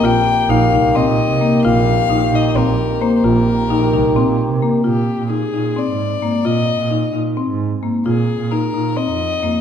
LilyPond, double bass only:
\new Staff \with { instrumentName = "Double bass" } { \clef bass \time 7/8 \key ees \major \tempo 4 = 131 bes,,8 r8 bes,,16 r16 c,16 r16 bes,16 bes,8 c8 r16 | bes,,4 bes,,16 r16 bes,16 r16 bes,,16 bes,,8 r8. | bes,,8 r8 bes,,16 r16 c,16 r16 bes,16 bes,8 c8 r16 | bes,8. bes,8. bes,8. aes,8. aes,16 r16 |
bes,8. bes,8. bes,8. aes,8. aes,16 r16 | bes,8. bes,8. bes,8. f,8. f,16 r16 | }